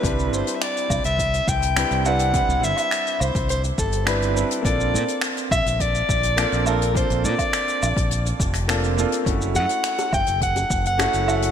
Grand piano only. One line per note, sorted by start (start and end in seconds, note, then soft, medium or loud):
0.02 1.72 G3 medium
0.02 1.73 C4 medium
0.02 1.73 D4 medium
0.02 1.74 E4 medium
0.07 1.75 B4 loud
1.76 2.02 G3 medium
1.76 2.02 C4 medium
1.76 2.02 D4 medium
1.76 2.03 E4 medium
1.76 2.03 B4 loud
2.04 2.30 G3 medium
2.04 2.31 C4 medium
2.04 2.31 D4 medium
2.04 2.31 E4 medium
2.04 2.32 B4 loud
2.31 4.02 G3 medium
2.31 4.03 C4 medium
2.31 4.04 D4 medium
2.35 4.04 E4 medium
2.35 4.05 B4 loud
4.05 4.32 G3 medium
4.05 4.32 C4 medium
4.05 4.32 D4 medium
4.05 4.33 E4 medium
4.05 4.33 B4 loud
4.34 4.60 G3 medium
4.34 4.61 C4 medium
4.34 4.61 D4 medium
4.34 4.61 E4 medium
4.34 4.62 B4 loud
4.61 6.33 A#3 medium
4.61 6.33 C4 medium
4.61 6.34 D4 medium
4.65 6.35 F4 medium
4.65 6.35 A4 loud
6.36 6.63 A#3 medium
6.36 6.63 C4 medium
6.36 6.63 D4 medium
6.36 6.64 F4 medium
6.36 6.64 A4 loud
6.65 6.91 A#3 medium
6.65 6.92 C4 medium
6.65 6.92 D4 medium
6.65 6.92 F4 medium
6.65 6.93 A4 loud
6.93 8.64 A#3 medium
6.93 8.65 C4 medium
6.93 8.65 D4 medium
6.93 8.66 F4 medium
6.98 8.67 A4 medium
8.68 8.94 A#3 medium
8.68 8.94 C4 medium
8.68 8.94 D4 medium
8.68 8.95 F4 medium
8.68 8.95 A4 loud
8.97 9.23 A#3 medium
8.97 9.23 C4 medium
8.97 9.23 D4 medium
8.97 9.24 F4 medium
8.97 9.24 A4 loud
9.24 10.95 A3 medium
9.24 10.95 C#4 medium
9.24 10.96 E4 medium
9.24 10.96 F#4 medium
9.29 10.97 A4 loud
10.98 11.24 A3 medium
10.98 11.24 C#4 medium
10.98 11.25 E4 medium
10.98 11.25 F#4 medium
10.98 11.25 A4 loud
11.27 11.51 A3 medium
11.27 11.51 C#4 medium
11.27 11.51 E4 medium
11.27 11.51 F#4 medium
11.27 11.51 A4 loud